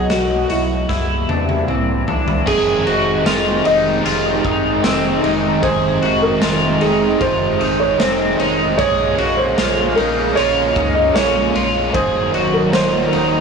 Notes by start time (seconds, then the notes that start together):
Already playing: B2 F#3 F#4 G#4 D#5
0.10 B1 F#4, snare, closed hi-hat
0.49 B1 E4 F#4, closed hi-hat
0.89 C2 C3 E3 G3 A#3 E4, kick, snare
1.29 E2 D4, high tom
1.49 high tom
1.68 C2 C4, mid tom
2.08 C2 D4, floor tom
2.28 floor tom
2.46 F1 F2 C3 D#3 G#3 C4 D#4 G#4, kick, crash
2.86 F1 D#3 G#3 C4 F#4, ride
3.25 F1 C3 D#3 G#3 F4, snare, ride, tambourine
3.30 C4
3.64 F1 G#3 C4 D#4 D#5, ride
3.69 D#3
4.04 F1 F2 C3 D#3 G#3 C4 F4, ride
4.43 G#1 G#3 C4 D#4, kick, ride
4.47 D#3
4.82 F1 C3 D#3 G#3 C4, snare, ride, tambourine
5.22 F1 G#3 C4 D#4, ride
5.26 D#3
5.62 F1 F2 C3 D#3 G#3 C4 G#4 C5, kick, ride
6.01 F1 G#3 C4 F#4, ride
6.06 D#3
6.22 A#4
6.41 F1 C3 D#3 G#3 F4, snare, ride, tambourine
6.45 C4
6.81 F1 G#3 C4 D#4 G#4, ride
6.85 D#3
7.20 F1 F2 C3 D#3 G#3 C4 F4 C5, kick, ride
7.60 G#1 G#3 C4 D#4, ride
7.64 D#3
7.80 C#5
7.98 F1 C3 D#3 G#3 C4 C5, snare, ride, tambourine
8.38 F1 G#3 C4 D#4, ride
8.42 D#3
8.78 A#1 A#2 C#3 F3 G#3 A#3 C#4 G#4 C#5 F5, kick, ride
9.16 A#1 G#3 C#4 F#4, ride
9.37 C5
9.56 A#1 A#2 F3 G#3 F4, snare, ride, tambourine
9.60 C#4
9.95 A#1 G#3 C#4 D#4 A#4, ride
9.99 F3
10.34 A#1 A#2 F3 G#3 C#4 F4 C#5, ride
10.74 C#2 G#3 C#4 D#4, kick, ride
10.78 F3
10.95 D#5
11.14 A#1 A#2 F3 G#3 C#4 C#5, snare, ride, tambourine
11.53 A#1 F3 G#3 C#4 F4, ride
11.93 D#1 A#2 D#3 F#3 A#3 D#4 G#4 A#4 C5, kick, ride
12.32 D#1 A#3 D#4 F#4, ride
12.36 F#3
12.53 A#4
12.71 D#1 D#3 F#3 A#3 F4 C5, snare, ride, tambourine
12.76 D#4
13.11 D#1 A#3 D#4, ride
13.15 F#3